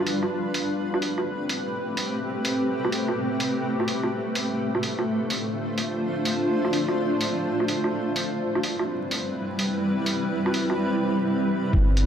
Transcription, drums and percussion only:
0.07 open hi-hat medium
0.23 low woodblock soft
0.54 open hi-hat medium
0.94 low woodblock medium
1.02 open hi-hat medium
1.18 low woodblock soft
1.49 open hi-hat medium
1.97 open hi-hat medium
2.45 open hi-hat medium
2.85 low woodblock medium
2.92 open hi-hat medium
3.08 low woodblock soft
3.40 open hi-hat medium
3.80 low woodblock soft
3.88 open hi-hat medium
4.03 low woodblock soft
4.35 open hi-hat medium
4.75 low woodblock medium
4.83 open hi-hat medium
4.99 low woodblock soft
5.30 open hi-hat medium
5.78 open hi-hat medium
6.25 open hi-hat medium
6.65 low woodblock medium
6.73 open hi-hat medium
6.89 low woodblock soft
7.21 open hi-hat medium
7.60 low woodblock soft
7.68 open hi-hat medium
7.84 low woodblock soft
8.16 open hi-hat medium
8.55 low woodblock medium
8.63 open hi-hat medium
8.79 low woodblock soft
9.11 open hi-hat medium
9.59 open hi-hat medium
10.06 open hi-hat medium
10.46 low woodblock medium
10.54 open hi-hat medium
10.70 low woodblock soft
11.73 kick loud
11.97 closed hi-hat medium

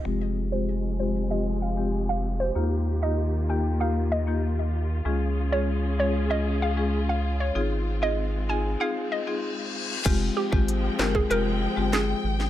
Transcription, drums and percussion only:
10.06 kick loud
10.06 closed hi-hat medium
10.06 crash loud
10.53 kick loud
10.68 closed hi-hat medium
10.99 snare loud
10.99 clap medium
11.15 kick loud
11.31 closed hi-hat medium
11.93 cross-stick loud
11.93 snare loud
11.93 clap medium
11.93 closed hi-hat medium
12.40 snare medium

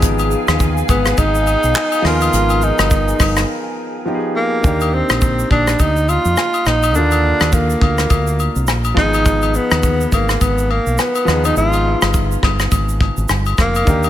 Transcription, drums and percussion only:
0.02 kick loud
0.02 hi-hat pedal medium
0.02 shaker medium
0.19 high agogo medium
0.19 shaker medium
0.31 shaker medium
0.48 cross-stick loud
0.48 high agogo medium
0.48 shaker medium
0.60 kick medium
0.60 shaker medium
0.77 shaker medium
0.89 kick medium
0.89 high agogo medium
0.89 shaker medium
1.05 cross-stick medium
1.05 shaker medium
1.18 kick medium
1.18 high agogo medium
1.18 shaker medium
1.35 shaker medium
1.47 high agogo medium
1.47 shaker medium
1.63 shaker medium
1.75 cross-stick loud
1.75 clap loud
1.75 low woodblock medium
1.75 shaker medium
1.92 high agogo medium
1.92 shaker medium
2.04 cross-stick loud
2.04 open hi-hat medium
2.21 high agogo medium
2.21 shaker medium
2.33 hi-hat pedal medium
2.33 shaker medium
2.50 high agogo medium
2.50 shaker medium
2.62 shaker medium
2.79 cross-stick loud
2.79 high agogo medium
2.79 shaker medium
2.91 kick loud
2.91 shaker medium
3.08 shaker medium
3.20 kick medium
3.20 cross-stick medium
3.20 open hi-hat medium
3.20 high agogo medium
3.20 shaker medium
3.36 cross-stick medium
3.36 shaker medium
4.64 kick loud
4.64 shaker medium
4.80 high agogo medium
4.80 shaker soft
5.09 cross-stick loud
5.09 high agogo medium
5.09 shaker medium
5.21 kick loud
5.21 shaker medium
5.39 shaker medium
5.51 kick medium
5.51 high agogo medium
5.67 cross-stick medium
5.67 shaker medium
5.79 kick medium
5.79 high agogo medium
5.79 shaker medium
5.96 shaker medium
6.09 high agogo medium
6.09 shaker medium
6.25 shaker medium
6.37 cross-stick loud
6.37 low woodblock medium
6.37 shaker medium
6.54 high agogo medium
6.54 shaker soft
6.66 cross-stick medium
6.66 shaker medium
6.83 high agogo medium
6.83 shaker medium
6.95 shaker medium
7.11 high agogo medium
7.11 shaker medium
7.40 cross-stick loud
7.40 high agogo medium
7.40 shaker medium
7.52 kick medium
7.52 shaker medium
7.70 shaker medium
7.81 kick medium
7.81 high agogo medium
7.98 cross-stick medium
7.98 shaker medium
8.10 kick medium
8.10 high agogo medium
8.10 shaker medium
8.27 shaker medium
8.39 high agogo medium
8.39 shaker medium
8.56 shaker medium
8.67 cross-stick loud
8.67 low woodblock medium
8.67 shaker medium
8.84 high agogo medium
8.84 shaker soft
8.97 kick medium
8.97 cross-stick medium
9.14 high agogo medium
9.14 shaker medium
9.26 kick loud
9.26 shaker medium
9.42 high agogo medium
9.42 shaker medium
9.54 shaker medium
9.71 cross-stick loud
9.71 high agogo medium
9.71 shaker medium
9.83 kick medium
9.83 shaker medium
10.01 shaker medium
10.12 kick medium
10.12 high agogo medium
10.12 shaker medium
10.29 cross-stick medium
10.29 shaker medium
10.41 kick medium
10.41 high agogo medium
10.41 shaker medium
10.58 shaker medium
10.71 high agogo medium
10.86 shaker medium
10.98 cross-stick loud
10.98 low woodblock medium
10.98 shaker medium
11.15 high agogo medium
11.15 shaker soft
11.27 cross-stick medium
11.27 shaker soft
11.44 high agogo medium
11.44 shaker medium
11.56 shaker medium
11.73 high agogo medium
11.73 shaker soft
12.02 cross-stick loud
12.02 high agogo medium
12.02 shaker medium
12.14 kick medium
12.14 shaker medium
12.32 shaker soft
12.43 kick medium
12.43 cross-stick medium
12.43 high agogo medium
12.60 cross-stick medium
12.60 shaker medium
12.72 kick medium
12.72 high agogo medium
12.72 shaker medium
12.89 shaker medium
13.01 kick medium
13.01 high agogo medium
13.17 shaker medium
13.28 cross-stick loud
13.28 low woodblock medium
13.28 shaker medium
13.46 high agogo medium
13.46 shaker soft
13.58 kick medium
13.58 cross-stick medium
13.58 shaker soft
13.75 high agogo medium
13.75 shaker medium
13.87 kick loud
13.87 shaker medium
14.03 high agogo medium
14.03 shaker soft

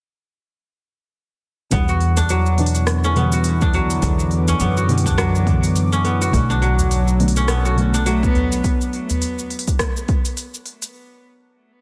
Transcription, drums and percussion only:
1.71 kick loud
1.71 open hi-hat soft
1.71 cabasa soft
1.88 cabasa soft
2.00 open hi-hat soft
2.17 open hi-hat soft
2.17 udu medium
2.17 cabasa medium
2.29 open hi-hat medium
2.29 cabasa medium
2.46 cabasa soft
2.58 open hi-hat soft
2.66 open hi-hat medium
2.75 open hi-hat soft
2.75 cabasa medium
2.87 cross-stick medium
2.87 open hi-hat medium
2.87 cabasa medium
3.04 cabasa soft
3.16 open hi-hat soft
3.32 open hi-hat soft
3.32 cabasa medium
3.44 open hi-hat medium
3.44 cabasa medium
3.61 kick loud
3.61 cabasa soft
3.73 open hi-hat soft
3.73 udu medium
3.90 open hi-hat soft
3.90 cabasa medium
4.02 kick loud
4.02 open hi-hat medium
4.02 cabasa medium
4.19 cabasa soft
4.31 open hi-hat soft
4.48 open hi-hat soft
4.48 udu medium
4.48 cabasa medium
4.60 open hi-hat medium
4.60 cabasa medium
4.77 cabasa soft
4.89 open hi-hat soft
4.98 open hi-hat soft
5.06 kick medium
5.06 open hi-hat soft
5.06 cabasa medium
5.18 kick medium
5.18 cross-stick medium
5.18 open hi-hat medium
5.18 cabasa medium
5.35 cabasa soft
5.47 kick medium
5.47 open hi-hat soft
5.63 open hi-hat soft
5.63 cabasa medium
5.76 open hi-hat medium
5.76 cabasa medium
5.93 cabasa soft
6.05 open hi-hat soft
6.22 open hi-hat soft
6.22 cabasa medium
6.33 kick loud
6.33 open hi-hat soft
6.33 cabasa medium
6.51 cabasa soft
6.62 open hi-hat soft
6.79 open hi-hat soft
6.79 udu medium
6.79 cabasa medium
6.91 open hi-hat medium
6.91 cabasa medium
7.08 cabasa soft
7.20 open hi-hat soft
7.28 open hi-hat soft
7.36 open hi-hat soft
7.36 cabasa medium
7.48 cross-stick medium
7.48 open hi-hat medium
7.48 cabasa medium
7.65 cabasa soft
7.78 open hi-hat soft
7.94 open hi-hat soft
7.94 cabasa medium
8.06 open hi-hat medium
8.06 cabasa medium
8.23 kick loud
8.23 cabasa soft
8.35 open hi-hat soft
8.35 udu medium
8.52 open hi-hat soft
8.52 cabasa medium
8.64 kick loud
8.64 open hi-hat medium
8.64 cabasa medium
8.81 cabasa soft
8.93 open hi-hat soft
9.10 open hi-hat soft
9.10 udu medium
9.10 cabasa medium
9.22 open hi-hat medium
9.22 cabasa medium
9.39 cabasa soft
9.50 open hi-hat soft
9.59 open hi-hat medium
9.68 kick medium
9.68 open hi-hat soft
9.68 cabasa medium
9.79 kick medium
9.79 cross-stick medium
9.79 open hi-hat soft
9.79 cabasa medium
9.97 cabasa soft
10.08 kick loud
10.08 open hi-hat soft
10.25 open hi-hat soft
10.25 cabasa medium
10.37 open hi-hat medium
10.37 cabasa medium
10.54 cabasa soft
10.66 open hi-hat soft
10.82 open hi-hat soft
10.82 cabasa medium

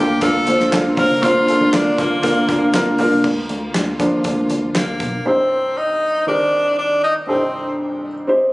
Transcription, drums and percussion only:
0.21 kick medium
0.21 closed hi-hat medium
0.47 closed hi-hat medium
0.60 snare soft
0.72 snare loud
0.72 clap medium
0.72 closed hi-hat medium
0.97 kick medium
0.97 open hi-hat medium
1.23 kick loud
1.23 closed hi-hat medium
1.48 closed hi-hat medium
1.73 snare loud
1.73 clap medium
1.73 closed hi-hat medium
1.98 kick medium
1.98 closed hi-hat medium
2.23 kick medium
2.23 closed hi-hat medium
2.49 kick medium
2.49 closed hi-hat medium
2.74 snare loud
2.74 clap medium
2.74 closed hi-hat medium
2.98 open hi-hat medium
3.24 kick medium
3.24 crash medium
3.49 closed hi-hat medium
3.74 snare loud
3.74 clap medium
3.74 closed hi-hat medium
4.00 kick medium
4.00 closed hi-hat medium
4.24 kick medium
4.24 closed hi-hat medium
4.50 closed hi-hat medium
4.75 snare loud
4.75 clap medium
4.75 closed hi-hat medium
5.00 kick medium
5.00 closed hi-hat medium

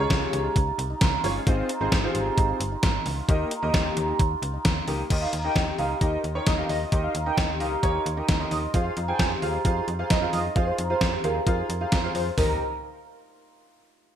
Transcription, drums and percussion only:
0.10 kick loud
0.10 snare loud
0.10 closed hi-hat medium
0.33 closed hi-hat medium
0.56 kick loud
0.56 closed hi-hat medium
0.79 closed hi-hat medium
1.01 kick loud
1.01 snare loud
1.01 closed hi-hat medium
1.24 open hi-hat medium
1.47 kick loud
1.47 closed hi-hat medium
1.69 closed hi-hat medium
1.92 kick loud
1.92 snare loud
1.92 closed hi-hat medium
2.15 closed hi-hat medium
2.38 kick loud
2.38 closed hi-hat medium
2.61 closed hi-hat medium
2.83 kick loud
2.83 snare loud
2.83 closed hi-hat medium
3.06 open hi-hat medium
3.29 kick loud
3.29 closed hi-hat medium
3.51 closed hi-hat medium
3.74 kick loud
3.74 snare loud
3.74 closed hi-hat medium
3.97 closed hi-hat medium
4.19 kick loud
4.19 closed hi-hat medium
4.43 closed hi-hat medium
4.65 kick loud
4.65 snare loud
4.65 closed hi-hat medium
4.88 open hi-hat medium
5.10 kick loud
5.10 closed hi-hat medium
5.10 crash loud
5.33 closed hi-hat medium
5.56 kick loud
5.56 snare loud
5.56 closed hi-hat medium
5.78 open hi-hat medium
6.01 kick loud
6.01 closed hi-hat medium
6.24 closed hi-hat medium
6.46 kick loud
6.46 snare loud
6.46 closed hi-hat medium
6.69 open hi-hat medium
6.92 kick loud
6.92 closed hi-hat medium
7.15 closed hi-hat medium
7.38 kick loud
7.38 snare loud
7.38 closed hi-hat medium
7.60 open hi-hat medium
7.83 kick loud
7.83 closed hi-hat medium
8.06 closed hi-hat medium
8.28 kick loud
8.28 snare loud
8.28 closed hi-hat medium
8.51 open hi-hat medium
8.74 kick loud
8.74 closed hi-hat medium
8.97 closed hi-hat medium
9.19 kick loud
9.19 snare loud
9.19 closed hi-hat medium
9.42 open hi-hat medium
9.65 kick loud
9.65 closed hi-hat medium
9.88 closed hi-hat medium
10.10 kick loud
10.10 snare loud
10.10 closed hi-hat medium
10.33 open hi-hat medium
10.56 kick loud
10.56 closed hi-hat medium
10.78 closed hi-hat medium
11.01 kick loud
11.01 snare loud
11.01 closed hi-hat medium
11.24 closed hi-hat medium
11.47 kick loud
11.47 closed hi-hat medium
11.70 closed hi-hat medium
11.92 kick loud
11.92 snare loud
11.92 closed hi-hat medium
12.15 open hi-hat medium
12.38 kick loud
12.38 floor tom loud
12.38 open hi-hat medium

